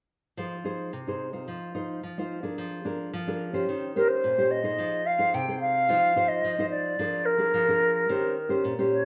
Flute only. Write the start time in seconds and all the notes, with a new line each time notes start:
3.96 A#4
4.08 C5
4.51 D#5
5.06 F5
5.34 G5
5.60 F5
6.28 D#5
6.70 D5
7.25 A#4
8.91 C#5